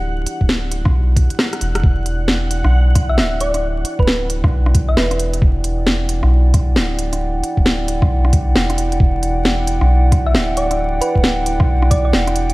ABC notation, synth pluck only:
X:1
M:4/4
L:1/16
Q:"Swing 16ths" 1/4=134
K:Em
V:1 name="Synth pluck"
z16 | z8 z3 e e z d2 | z3 B2 z6 e B3 z | z16 |
z16 | z8 z3 e e z d2 | z2 B2 z6 d d z4 |]